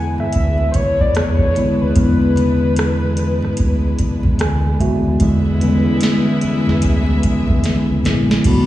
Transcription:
Already playing: fingered electric bass E2, tine electric piano D3 E3 G#3 B3 E4, string section G#3 D4 E4 B4
0.18 analog synth lead E5, cross-stick, low conga
0.33 fingered electric bass D2, kick, closed hi-hat
0.58 muted conga
0.72 analog synth lead C5 C#5, kick, closed hi-hat, high conga
0.99 fingered electric bass E2, analog synth lead D5, kick, high conga
1.15 fingered electric bass E2, analog synth lead C#5, cross-stick, closed hi-hat, muted conga, high conga
1.39 kick
1.55 tine electric piano D3 E3 G#3 B3 E4, closed hi-hat, high conga, low conga
1.81 fingered electric bass D#2, analog synth lead B4
1.95 fingered electric bass E2, tine electric piano D3 E3 G#3 B3 C#4, kick, closed hi-hat, muted conga, low conga
2.04 tine electric piano D4
2.21 muted conga
2.36 closed hi-hat, high conga
2.76 cross-stick, closed hi-hat, muted conga
3.02 high conga
3.17 cross-stick, closed hi-hat
3.43 cross-stick, low conga
3.57 fingered electric bass D2, kick, closed hi-hat, muted conga
3.99 kick, closed hi-hat, high conga
4.23 fingered electric bass E2, kick, high conga
4.39 fingered electric bass D2, tine electric piano G#5, cross-stick, closed hi-hat, muted conga, high conga
4.79 tine electric piano D3 E3 G#3 B3 F#4 E5, kick, closed hi-hat, high conga, low conga
5.07 fingered electric bass D#2
5.20 fingered electric bass E2, tine electric piano D3 E3 G#3 B3 E4, string section D3 G#4 B4 E5, saxophone section G#3 B3 E4, kick, closed hi-hat, low conga
5.45 muted conga
5.60 tine electric piano D3 E3 G3 B3 C#4, closed hi-hat, high conga
5.68 tine electric piano G#3
6.01 snare, closed hi-hat
6.26 muted conga
6.41 muted fingered electric bass stroke, closed hi-hat
6.67 fingered electric bass E2, snare, low conga
6.81 kick, closed hi-hat, muted conga
6.85 fingered electric bass D2
7.06 muted conga
7.23 kick, closed hi-hat, high conga
7.47 fingered electric bass E2, kick, high conga
7.63 snare, closed hi-hat, muted conga, high conga
7.90 fingered electric bass C#2
8.04 fingered electric bass A#1, tine electric piano D3 E3 G#3 B3 E4, snare, closed hi-hat, high conga, low conga
8.31 snare
8.44 fingered electric bass B1, tine electric piano C#3 F#3 A3 B3 F#4, saxophone section B3 D4 F#4, string section F#4 B4 D5 A5, analog synth lead B5, kick, closed hi-hat, crash, muted conga, low conga
8.51 tine electric piano D3

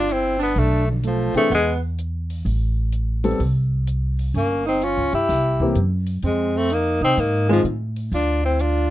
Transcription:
Already playing: upright bass G1, tenor saxophone D4, alto saxophone F4
0.09 tenor saxophone C4, alto saxophone E4, closed hi-hat
0.39 tenor saxophone B3, alto saxophone D4, open hi-hat
0.55 upright bass B1, tenor saxophone A3, alto saxophone D4, open hi-hat
0.87 tenor saxophone D3, alto saxophone F3
1.03 tenor saxophone F3, alto saxophone A3, closed hi-hat
1.34 grand piano E3 B3 D4 G#4, tenor saxophone A3, alto saxophone C4, muted upright bass stroke, open hi-hat
1.50 upright bass E2, alto saxophone B3, open hi-hat
1.55 tenor saxophone G#3
1.98 closed hi-hat
2.30 open hi-hat
2.45 upright bass A1, open hi-hat
2.92 closed hi-hat
3.24 grand piano G3 B3 C4 A4, open hi-hat
3.40 upright bass C2, open hi-hat
3.87 closed hi-hat
4.19 open hi-hat
4.34 upright bass G1, tenor saxophone A#3, alto saxophone C#4, open hi-hat
4.66 tenor saxophone C4, alto saxophone D#4
4.81 tenor saxophone C#4, alto saxophone F4, closed hi-hat
4.97 upright bass C#2
5.13 upright bass G2, tenor saxophone E4, alto saxophone G4, open hi-hat
5.29 upright bass C2, snare, open hi-hat
5.60 grand piano E3 A#3 C4 G4, kick
5.75 upright bass F#2, closed hi-hat
6.06 open hi-hat
6.22 upright bass F2, tenor saxophone G#3, alto saxophone C4, open hi-hat
6.54 tenor saxophone A3, alto saxophone C4
6.70 tenor saxophone A#3, alto saxophone D#4, closed hi-hat
7.01 upright bass C3, tenor saxophone C4, alto saxophone D#4
7.17 upright bass G#2, tenor saxophone A#3, alto saxophone D#4, open hi-hat
7.49 grand piano D#3 G#3 C4 F4, tenor saxophone F3, alto saxophone G#3
7.64 upright bass A2, closed hi-hat
7.96 open hi-hat
8.12 upright bass D2, tenor saxophone D4, alto saxophone F4, open hi-hat
8.44 tenor saxophone C4, alto saxophone E4
8.59 tenor saxophone D4, alto saxophone F4, closed hi-hat

